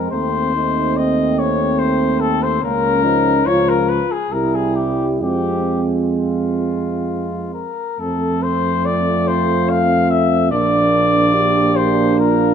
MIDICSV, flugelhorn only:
0, 0, Header, 1, 2, 480
1, 0, Start_track
1, 0, Key_signature, -4, "minor"
1, 0, Tempo, 836820
1, 75, Time_signature, 3, 2, 24, 8
1, 2474, Tempo, 920245
1, 4394, Key_signature, -1, "major"
1, 4394, Tempo, 841515
1, 6988, End_track
2, 0, Start_track
2, 0, Title_t, "Flugelhorn"
2, 0, Program_c, 0, 56
2, 0, Note_on_c, 0, 70, 57
2, 61, Note_off_c, 0, 70, 0
2, 65, Note_on_c, 0, 72, 69
2, 556, Note_on_c, 0, 75, 70
2, 565, Note_off_c, 0, 72, 0
2, 797, Note_on_c, 0, 73, 70
2, 806, Note_off_c, 0, 75, 0
2, 1025, Note_on_c, 0, 72, 69
2, 1034, Note_off_c, 0, 73, 0
2, 1264, Note_on_c, 0, 69, 72
2, 1273, Note_off_c, 0, 72, 0
2, 1392, Note_on_c, 0, 72, 68
2, 1401, Note_off_c, 0, 69, 0
2, 1507, Note_off_c, 0, 72, 0
2, 1511, Note_on_c, 0, 70, 81
2, 1986, Note_on_c, 0, 73, 83
2, 1995, Note_off_c, 0, 70, 0
2, 2115, Note_on_c, 0, 70, 73
2, 2123, Note_off_c, 0, 73, 0
2, 2230, Note_on_c, 0, 71, 68
2, 2239, Note_off_c, 0, 70, 0
2, 2361, Note_on_c, 0, 68, 64
2, 2369, Note_off_c, 0, 71, 0
2, 2479, Note_on_c, 0, 70, 72
2, 2487, Note_off_c, 0, 68, 0
2, 2597, Note_on_c, 0, 68, 60
2, 2605, Note_off_c, 0, 70, 0
2, 2706, Note_on_c, 0, 67, 62
2, 2714, Note_off_c, 0, 68, 0
2, 2874, Note_off_c, 0, 67, 0
2, 2944, Note_on_c, 0, 67, 62
2, 3265, Note_off_c, 0, 67, 0
2, 3431, Note_on_c, 0, 65, 42
2, 4137, Note_off_c, 0, 65, 0
2, 4158, Note_on_c, 0, 70, 53
2, 4395, Note_on_c, 0, 69, 60
2, 4404, Note_off_c, 0, 70, 0
2, 4640, Note_on_c, 0, 72, 68
2, 4649, Note_off_c, 0, 69, 0
2, 4883, Note_on_c, 0, 74, 76
2, 4892, Note_off_c, 0, 72, 0
2, 5124, Note_on_c, 0, 72, 74
2, 5133, Note_off_c, 0, 74, 0
2, 5364, Note_on_c, 0, 77, 80
2, 5372, Note_off_c, 0, 72, 0
2, 5596, Note_on_c, 0, 76, 84
2, 5605, Note_off_c, 0, 77, 0
2, 5829, Note_off_c, 0, 76, 0
2, 5832, Note_on_c, 0, 74, 91
2, 6542, Note_on_c, 0, 72, 76
2, 6551, Note_off_c, 0, 74, 0
2, 6787, Note_off_c, 0, 72, 0
2, 6790, Note_on_c, 0, 70, 73
2, 6988, Note_off_c, 0, 70, 0
2, 6988, End_track
0, 0, End_of_file